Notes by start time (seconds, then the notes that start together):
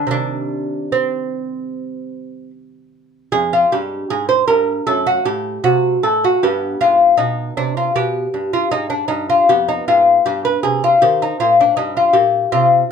0.07 C3 D#3 G3
0.11 D4
0.92 C4
3.32 F2 G#3 G#4
3.53 F4
3.72 G2 G4
4.10 G#2 G#4
4.29 C5
4.47 G2 A#4
4.87 F#2 A3 A4
5.07 F#4
5.25 A2 G4
5.64 C3 F#4
6.03 A2 A4
6.24 F#4
6.43 G2 B3 G4
6.81 G#2 F4
7.17 B2 D#4
7.57 C3 D4
7.77 F4
7.95 B2 G4
8.34 G2
8.53 F4
8.71 G#2 D#4
8.90 D4
9.08 G2 D#4
9.30 F4
9.49 F2 B3 G4
9.68 D#4
9.88 G#2 F4
10.26 G2 G4
10.45 B4
10.63 C3 G#4
10.84 F4
11.02 D#3 C4 G4
11.22 D#4
11.40 A#2 F4
11.61 D4
11.77 G2 D#4
11.97 F4
12.13 A#2 G4
12.52 C3 C4 F4